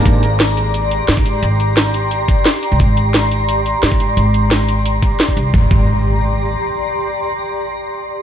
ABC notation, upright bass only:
X:1
M:4/4
L:1/16
Q:1/4=175
K:Ablyd
V:1 name="Upright bass" clef=bass
A,,,8- A,,,3 z A,,4 | A,,,8- A,,,3 z4 C,, | A,,,8- A,,,3 z A,,4 | A,,,8- A,,,3 z3 C,,2 |
A,,, z A,,,8- A,,,2 z4 | z16 |]